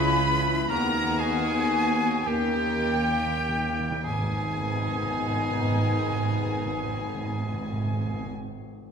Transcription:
Already playing: double bass section C#2, cello section C#2, viola section E3 C#4, french horn section C#4 E4, violin section E4 G#4 B5, oboe B4, flute B5
0.68 cello section D#2, double bass section D#2, timpani D#3, viola section D#3 B3, french horn section B3 D#4, violin section F#4 G#4 A#5, oboe A#4, flute A#5
1.18 oboe G#4, violin section G#5, flute G#5
2.24 double bass section D#2, cello section D#2, timpani D#3, viola section D#3 A#3, violin section G4 A#4 G5, oboe G4, flute G5
2.28 french horn section A#3 C#4
2.35 timpani D#3
2.44 timpani D#3
2.55 timpani D#3
2.65 timpani D#3
2.75 timpani D#3
2.95 timpani D#3
3.06 timpani D#3
3.16 timpani D#3
3.26 timpani D#3
3.37 timpani D#3
3.49 timpani D#3
3.59 timpani D#3
3.69 timpani D#3
3.81 timpani D#3
3.91 timpani D#3
4.03 double bass section G#1, timpani G#2, cello section G#2, violin section D#4 G#4 G#5, oboe G#4, flute G#5
4.07 viola section D#3 B3, french horn section B3 D#4
4.12 timpani G#2
4.19 timpani G#2
4.26 timpani G#2
4.33 timpani G#2
4.40 timpani G#2
4.47 timpani G#2
4.54 timpani G#2
4.61 timpani G#2
4.68 timpani G#2
4.75 timpani G#2
4.81 timpani G#2
4.89 timpani G#2
4.96 timpani G#2
5.03 timpani G#2
5.09 timpani G#2
5.16 timpani G#2
5.23 timpani G#2
5.29 timpani G#2
5.36 timpani G#2
5.42 timpani G#2
5.51 timpani G#2
5.58 timpani G#2
5.64 timpani G#2
5.71 timpani G#2
5.77 timpani G#2
5.84 timpani G#2
5.91 timpani G#2
5.98 timpani G#2
6.05 timpani G#2
6.11 timpani G#2
6.18 timpani G#2
6.25 timpani G#2
6.32 timpani G#2
6.39 timpani G#2
6.46 timpani G#2
6.53 timpani G#2
6.59 timpani G#2
6.66 timpani G#2
6.73 timpani G#2
6.80 timpani G#2
6.87 timpani G#2
6.94 timpani G#2
7.00 timpani G#2
7.07 timpani G#2
7.14 timpani G#2
7.21 timpani G#2
7.27 timpani G#2
7.34 timpani G#2
7.40 timpani G#2
7.47 timpani G#2
7.54 timpani G#2
7.60 timpani G#2
7.67 timpani G#2
7.73 timpani G#2
7.80 timpani G#2
7.87 timpani G#2
7.93 timpani G#2
8.00 timpani G#2
8.07 timpani G#2
8.14 timpani G#2
8.20 timpani G#2

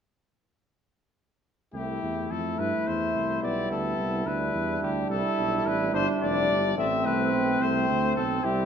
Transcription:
1.74 tuba C2, french horn A3, flugelhorn E4, trumpet G4
2.03 tuba E2
2.31 tuba F2, trumpet A4
2.59 tuba G2, trombone E4, trumpet B4
2.87 tuba E2, trumpet C5
3.15 tuba C2
3.42 tuba B1, french horn G3, trombone B3, trumpet D5
3.70 tuba D2, trumpet A4
3.98 tuba C2
4.26 tuba D2, french horn G3, trombone D4, trumpet B4
4.54 tuba E2
4.82 tuba D2, trumpet G4
5.09 tuba C2, flugelhorn E4, trumpet A4
5.38 tuba B1
5.65 tuba A1, trumpet B4
5.93 tuba G1, flugelhorn D4, trombone E4, trumpet C5
6.22 tuba F1, trumpet D5
6.50 tuba G1
6.77 tuba A1, french horn A3, trombone C4, flugelhorn C4, trumpet E5
7.05 tuba C2, trumpet B4
7.32 tuba B1
7.60 tuba C2, french horn A3, trumpet C5
7.88 tuba D2
8.16 tuba B1, trumpet A4
8.43 tuba C2, french horn G3, trombone E4, trumpet G4

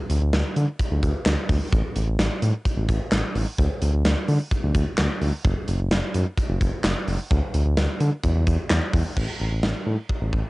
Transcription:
0.10 analog synth bass D2, closed hi-hat
0.21 analog synth bass D2
0.33 analog synth bass D2, snare, closed hi-hat
0.56 analog synth bass D3, closed hi-hat
0.79 kick, closed hi-hat
0.91 analog synth bass D2
1.03 analog synth bass D2, kick, closed hi-hat
1.26 analog synth bass D2, snare, clap, closed hi-hat
1.49 analog synth bass D2, kick, open hi-hat
1.72 analog synth bass A1, kick, closed hi-hat
1.96 analog synth bass A1, closed hi-hat
2.07 analog synth bass A1
2.19 analog synth bass A1, snare, closed hi-hat
2.42 analog synth bass A2, closed hi-hat
2.65 kick, closed hi-hat
2.77 analog synth bass A1
2.89 analog synth bass A1, kick, closed hi-hat
3.12 analog synth bass A1, snare, clap, closed hi-hat
3.35 analog synth bass A1, open hi-hat
3.59 analog synth bass D2, kick, closed hi-hat
3.82 analog synth bass D2, closed hi-hat
3.93 analog synth bass D2
4.05 analog synth bass D2, snare, closed hi-hat
4.28 analog synth bass D3, open hi-hat
4.51 kick, closed hi-hat
4.63 analog synth bass D2
4.75 analog synth bass D2, kick, closed hi-hat
4.98 analog synth bass D2, snare, clap, closed hi-hat
5.21 analog synth bass D2, open hi-hat
5.45 analog synth bass F#1, kick, closed hi-hat
5.68 analog synth bass F#1, closed hi-hat
5.80 analog synth bass F#1
5.91 analog synth bass F#1, snare, closed hi-hat
6.14 analog synth bass F#2, closed hi-hat
6.37 kick, closed hi-hat
6.49 analog synth bass F#1
6.61 analog synth bass F#1, kick, closed hi-hat
6.84 analog synth bass F#1, snare, clap, closed hi-hat
7.07 analog synth bass F#1, open hi-hat
7.31 analog synth bass D2, kick, closed hi-hat
7.54 analog synth bass D2, closed hi-hat
7.66 analog synth bass D2
7.77 analog synth bass D2, snare, closed hi-hat
8.00 analog synth bass D3, closed hi-hat
8.23 analog synth bass E2, kick, closed hi-hat
8.35 analog synth bass E2
8.47 analog synth bass E2, kick, closed hi-hat
8.70 analog synth bass E2, snare, clap, closed hi-hat
8.93 analog synth bass E2, kick, open hi-hat
9.17 analog synth bass A1, kick, crash
9.40 analog synth bass A1
9.52 analog synth bass A1
9.63 analog synth bass A1, snare
9.86 analog synth bass A2
10.10 kick
10.21 analog synth bass A1
10.33 analog synth bass A1, kick

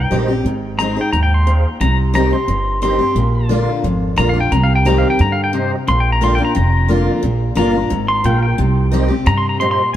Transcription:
Already playing: steel-string acoustic guitar G2
0.00 pedal steel guitar G5
0.10 upright bass A#1, steel-string acoustic guitar D#3 G3 C4 G4, tonewheel organ G4 C5 D#5
0.28 steel-string acoustic guitar C4 G4
0.45 upright bass G#1, steel-string acoustic guitar G#2
0.78 steel-string acoustic guitar G#3 C4 D#4 G#4, tonewheel organ G#4 C5 D#5, pedal steel guitar A#5
0.96 steel-string acoustic guitar D#4 G#4
1.01 pedal steel guitar G5
1.13 upright bass D#2, steel-string acoustic guitar G#2, pedal steel guitar A#5
1.23 pedal steel guitar G5
1.34 pedal steel guitar C6
1.46 steel-string acoustic guitar A#2, tonewheel organ G#4 C5 F5
1.81 upright bass C2, steel-string acoustic guitar C3, pedal steel guitar A#5
2.14 steel-string acoustic guitar D#3 G3 C4 G4, tonewheel organ G4 C5 D#5, pedal steel guitar A#5
2.31 steel-string acoustic guitar C4 G4, pedal steel guitar C6
2.48 upright bass G1, steel-string acoustic guitar G2
2.82 steel-string acoustic guitar D#3 G3 C4 G4, tonewheel organ G4 C5 D#5, pedal steel guitar C6
2.99 steel-string acoustic guitar C4 G4
3.15 upright bass A#1, steel-string acoustic guitar A#2
3.49 steel-string acoustic guitar D3 A#3 D4 F4, tonewheel organ F4 A#4 D5
3.84 upright bass G#1, steel-string acoustic guitar F2
4.16 upright bass A#1, steel-string acoustic guitar D3 A#3 D4 F4, tonewheel organ F4 A#4 D5, pedal steel guitar A#5
4.29 pedal steel guitar F5
4.34 steel-string acoustic guitar D4 F4
4.40 pedal steel guitar G5
4.52 upright bass C2, steel-string acoustic guitar C3, pedal steel guitar A#5
4.63 pedal steel guitar F5
4.75 pedal steel guitar G5
4.85 steel-string acoustic guitar D#3 G3 C4 G4, tonewheel organ G4 C5 D#5, pedal steel guitar A#5
4.98 pedal steel guitar F5
5.10 pedal steel guitar G5
5.19 upright bass G2, steel-string acoustic guitar D3, pedal steel guitar A#5
5.32 pedal steel guitar F5
5.44 pedal steel guitar G5
5.53 steel-string acoustic guitar C3, tonewheel organ G4 C5 D#5, pedal steel guitar C5
5.88 upright bass A#1, steel-string acoustic guitar A#2, pedal steel guitar C6
6.00 pedal steel guitar G5
6.12 pedal steel guitar A#5
6.21 steel-string acoustic guitar D3 A#3 D4 F4, tonewheel organ F4 A#4 D5, pedal steel guitar C6
6.35 steel-string acoustic guitar F4, pedal steel guitar G5
6.40 steel-string acoustic guitar D4
6.45 pedal steel guitar A#5
6.55 upright bass F1, steel-string acoustic guitar F2, pedal steel guitar A#5
6.88 steel-string acoustic guitar D3 A#3 D4 F4, tonewheel organ F4 A#4 D5
7.23 upright bass A#1, steel-string acoustic guitar A#2
7.55 upright bass G1, steel-string acoustic guitar D3 A#3 D4 F4, tonewheel organ F4 A#4 D5, pedal steel guitar A#5
7.73 steel-string acoustic guitar D4 F4
7.90 upright bass G#1, steel-string acoustic guitar G#2
8.08 pedal steel guitar C6
8.24 upright bass A#1, steel-string acoustic guitar A#2, tonewheel organ F4 A#4 F5, pedal steel guitar G5
8.42 pedal steel guitar G5
8.58 upright bass C2, steel-string acoustic guitar C3
8.92 steel-string acoustic guitar D#3 G3 C4 G4, tonewheel organ G4 C5 D#5
9.08 steel-string acoustic guitar C4 G4
9.26 upright bass G2, steel-string acoustic guitar C3, pedal steel guitar A#5
9.38 pedal steel guitar C6
9.49 pedal steel guitar A#5
9.60 steel-string acoustic guitar A#2, tonewheel organ G4 C5 D#5, pedal steel guitar C6
9.71 pedal steel guitar C6

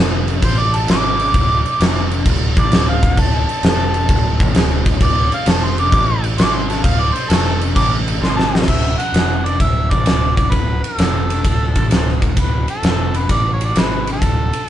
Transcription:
Already playing: picked electric bass F1
0.28 crash
0.42 picked electric bass A1, harmonica C5, kick, crash
0.60 harmonica D5
0.74 harmonica A5, crash
0.88 picked electric bass G#1, harmonica D6, snare, crash
1.19 crash
1.34 picked electric bass D1, kick, crash
1.66 muted picked electric bass stroke, crash
1.80 picked electric bass F1, snare, crash
2.11 crash
2.25 picked electric bass D1, kick, crash
2.57 picked electric bass A1, harmonica D5, kick, crash
2.71 picked electric bass D1, snare, crash
2.89 harmonica F5
3.03 picked electric bass D1, kick, crash
3.17 picked electric bass D1, harmonica A5, kick, crash
3.34 harmonica A5
3.48 muted picked electric bass stroke, crash
3.63 picked electric bass F1, snare, crash
3.94 crash
4.09 picked electric bass D1, kick, crash
4.40 picked electric bass A1, kick, crash
4.55 picked electric bass D1, snare, crash
4.86 picked electric bass D1, kick, snare, crash
5.01 picked electric bass D1, harmonica D5, kick, crash
5.32 harmonica F5, muted picked electric bass stroke, crash
5.46 picked electric bass F1, harmonica A5, snare, crash
5.64 harmonica C6
5.78 harmonica D6, crash
5.92 picked electric bass A1, harmonica D6, kick, crash
6.24 crash
6.38 picked electric bass G#1, harmonica D6, snare, crash
6.54 harmonica C6
6.69 harmonica A5, snare, crash
6.84 picked electric bass D1, harmonica F5, kick, crash
7.00 harmonica D5
7.14 harmonica C5, muted picked electric bass stroke, crash
7.30 picked electric bass F1, harmonica A4, snare, crash
7.61 crash
7.76 picked electric bass A1, harmonica D6, kick, crash
8.08 crash
8.21 picked electric bass G#1, harmonica C6, snare
8.37 harmonica A5, snare
8.55 snare
8.62 snare
8.68 picked electric bass D1, harmonica E5, kick, crash
8.98 harmonica F#5, muted picked electric bass stroke, ride
9.12 picked electric bass F1, snare, ride
9.45 harmonica D5, ride
9.60 picked electric bass D1, harmonica E5, kick, ride
9.90 picked electric bass A1, harmonica D5, kick, ride
10.05 picked electric bass D1, snare, ride
10.37 picked electric bass D1, harmonica D5, kick, ride
10.51 picked electric bass D1, harmonica B4, kick, ride
10.83 harmonica A4, muted picked electric bass stroke, ride
10.98 picked electric bass F1, snare, ride
11.30 ride
11.45 picked electric bass D1, kick, ride
11.75 picked electric bass A1, kick, ride
11.90 picked electric bass D1, snare, ride
12.08 snare
12.22 picked electric bass D1, kick, ride
12.37 picked electric bass D1, harmonica B4, kick, ride
12.68 harmonica A4, muted picked electric bass stroke, ride
12.83 picked electric bass F1, snare, ride
13.14 harmonica B4, ride
13.29 picked electric bass A1, harmonica D5, kick, ride
13.53 harmonica C#5
13.61 harmonica D5, ride
13.75 picked electric bass G#1, snare, ride
13.80 harmonica B4
14.07 ride
14.12 harmonica A4
14.22 picked electric bass D1, kick, ride
14.53 muted picked electric bass stroke, ride

